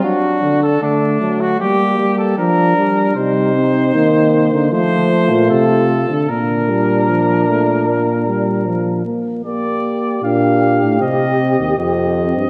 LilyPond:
<<
  \new Staff \with { instrumentName = "Trumpet" } { \time 4/4 \key g \minor \tempo 4 = 77 fis'8. a'16 d'8. fis'16 g'8. a'16 bes'4 | \key bes \major c''2 c''4 a'4 | bes'2.~ bes'8 r8 | d''4 f''4 ees''4 ees''4 | }
  \new Staff \with { instrumentName = "Flugelhorn" } { \time 4/4 \key g \minor d'4 a4 bes4 d'4 | \key bes \major ees'2 f'2 | d'2.~ d'8 r8 | g'1 | }
  \new Staff \with { instrumentName = "Euphonium" } { \clef bass \time 4/4 \key g \minor fis8 d8 d8 fis8 g8 g8 f8 g8 | \key bes \major g8 c'8 bes4 a2 | bes8 g8 f8 a8 bes8 g8 f8 bes8 | bes4 d'4 c'4 c'4 | }
  \new Staff \with { instrumentName = "Bass trombone" } { \clef bass \time 4/4 \key g \minor r1 | \key bes \major c4 ees8. d16 f8. bes,16 c8. d16 | bes,2.~ bes,8 r8 | r4 bes,8. a,16 c8. ees,16 f,8. g,16 | }
>>